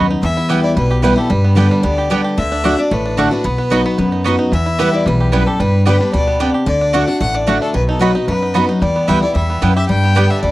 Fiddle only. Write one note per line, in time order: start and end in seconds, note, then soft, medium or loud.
0.22 0.61 E5 medium
0.63 0.75 D5 loud
0.76 1.02 B4 loud
1.03 1.20 B4 medium
1.19 1.32 A4 medium
1.31 1.56 B4 medium
1.57 1.82 B4 loud
1.84 2.22 D5 loud
2.38 2.81 E5 loud
2.79 2.94 D5 medium
2.93 3.19 B4 medium
3.17 3.33 A4 medium
3.32 4.39 B4 medium
4.53 4.96 E5 loud
4.95 5.08 D5 loud
5.07 5.33 B4 medium
5.35 5.48 B4 medium
5.47 5.61 A4 medium
5.60 5.86 B4 loud
5.87 6.12 B4 loud
6.13 6.51 D5 loud
6.66 7.09 D5 loud
7.07 7.20 F#5 loud
7.21 7.37 F#5 loud
7.35 7.61 D5 loud
7.62 7.73 A4 medium
7.74 7.87 B4 loud
7.90 8.01 A4 medium
7.99 8.26 B4 loud
8.27 8.65 B4 medium
8.80 9.09 D5 loud
9.07 9.22 E5 loud
9.22 9.34 D5 loud
9.35 9.73 E5 medium
9.75 9.88 E5 loud
9.89 10.32 G5 loud
10.30 10.41 E5 loud
10.41 10.51 D5 loud